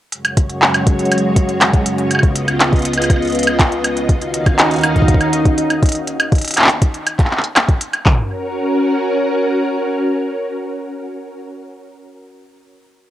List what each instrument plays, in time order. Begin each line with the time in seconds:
0.12 string machine F#2 C#3 G#3 F#4 C#5, closed hi-hat
0.25 closed hi-hat, high woodblock
0.37 kick, closed hi-hat
0.50 closed hi-hat
0.62 clap
0.74 closed hi-hat, high woodblock
0.87 kick, closed hi-hat
0.99 closed hi-hat
1.05 closed hi-hat
1.12 closed hi-hat, high woodblock
1.18 closed hi-hat
1.36 kick, closed hi-hat
1.49 closed hi-hat
1.61 clap, closed hi-hat, high woodblock
1.73 kick, closed hi-hat
1.86 closed hi-hat
1.98 closed hi-hat
2.11 string machine C#2 B3 F4 D#5, closed hi-hat, high woodblock
2.15 high woodblock
2.19 high woodblock
2.23 kick, closed hi-hat
2.36 closed hi-hat
2.48 closed hi-hat, high woodblock
2.60 clap, closed hi-hat
2.73 kick, closed hi-hat
2.76 closed hi-hat
2.79 closed hi-hat
2.82 closed hi-hat
2.85 closed hi-hat
2.93 closed hi-hat
2.98 high woodblock
3.02 closed hi-hat
3.04 closed hi-hat, high woodblock
3.10 kick, closed hi-hat, high woodblock
3.16 high woodblock
3.22 closed hi-hat
3.25 closed hi-hat
3.27 closed hi-hat
3.30 closed hi-hat
3.32 closed hi-hat
3.35 closed hi-hat
3.39 closed hi-hat
3.43 closed hi-hat
3.47 closed hi-hat, high woodblock
3.59 kick, clap, closed hi-hat
3.72 closed hi-hat
3.84 closed hi-hat, high woodblock
3.97 closed hi-hat
4.09 string machine D#2 D#3 C#4 F#4 F5, synth texture D#4 D#5, kick, closed hi-hat
4.21 closed hi-hat
4.34 closed hi-hat
4.46 kick, closed hi-hat, high woodblock
4.59 clap, closed hi-hat
4.71 closed hi-hat
4.74 closed hi-hat
4.76 closed hi-hat
4.78 closed hi-hat
4.81 closed hi-hat
4.83 closed hi-hat, high woodblock
4.96 kick, closed hi-hat
5.02 kick
5.08 kick, closed hi-hat
5.14 kick
5.21 closed hi-hat, high woodblock
5.33 closed hi-hat
5.45 kick, closed hi-hat
5.58 closed hi-hat
5.70 closed hi-hat, high woodblock
5.83 kick, closed hi-hat
5.86 closed hi-hat
5.89 closed hi-hat
5.92 closed hi-hat
6.07 closed hi-hat
6.20 closed hi-hat, high woodblock
6.32 kick, closed hi-hat
6.35 closed hi-hat
6.38 closed hi-hat
6.42 closed hi-hat
6.45 closed hi-hat
6.48 closed hi-hat
6.51 closed hi-hat
6.54 clap, closed hi-hat
6.57 clap, closed hi-hat, high woodblock
6.62 clap
6.64 clap
6.67 clap, closed hi-hat
6.82 kick, closed hi-hat
6.94 closed hi-hat
7.07 closed hi-hat, high woodblock
7.19 kick, clap, closed hi-hat
7.25 clap
7.31 clap
7.38 clap
7.44 closed hi-hat
7.56 clap, closed hi-hat, high woodblock
7.69 kick, closed hi-hat
7.81 closed hi-hat
7.93 closed hi-hat, high woodblock
8.06 string machine C#4 F#4 A#4, kick, clap, floor tom